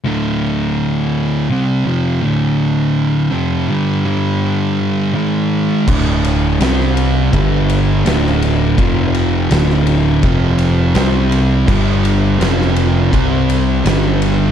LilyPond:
<<
  \new Staff \with { instrumentName = "Distorted electric guitar" } { \clef bass \time 4/4 \key d \minor \tempo 4 = 83 <d, a, d>2 <c g c'>8 <f, c f>8 <d, a, d>4~ | <d, a, d>8 <f, c f>8 <g, d g>8 <g, d g>4. <gis, dis gis>4 | <d, a, d>4 <c g c'>4 <g, d g>4 <d, a, d>4 | <f, c f>4 <d, a, d>4 <f, c f>4 <c g c'>4 |
<g, d g>4 <f, c f>4 <c g c'>4 <g, d g>4 | }
  \new Staff \with { instrumentName = "Distorted electric guitar" } { \clef bass \time 4/4 \key d \minor <d, a, d>2 <c g c'>8 <f, c f>8 <d, a, d>4~ | <d, a, d>8 <f, c f>8 <g, d g>8 <g, d g>4. <gis, dis gis>4 | <d, a, d>4 <c g c'>4 <g, d g>4 <d, a, d>4 | <f, c f>4 <d, a, d>4 <f, c f>4 <c g c'>4 |
<g, d g>4 <f, c f>4 <c g c'>4 <g, d g>4 | }
  \new Staff \with { instrumentName = "Picked electric bass" } { \clef bass \time 4/4 \key d \minor r1 | r1 | d,,4 c,4 g,,4 d,,4 | f,,4 d,,4 f,,4 c,4 |
g,,4 f,,4 c,4 g,,4 | }
  \new DrumStaff \with { instrumentName = "Drums" } \drummode { \time 4/4 r4 r4 r4 r4 | r4 r4 r4 r4 | <cymc bd>8 cymr8 <cymr sn>16 sn16 cymr8 <bd cymr>8 cymr8 <cymr sn>16 sn16 cymr8 | <bd cymr>8 cymr8 <cymr sn>16 sn16 cymr8 <bd cymr>8 cymr8 <cymr sn>8 cymr8 |
<cymc bd>8 cymr8 <cymr sn>16 sn16 cymr8 <bd cymr>8 cymr8 <cymr sn>8 cymr8 | }
>>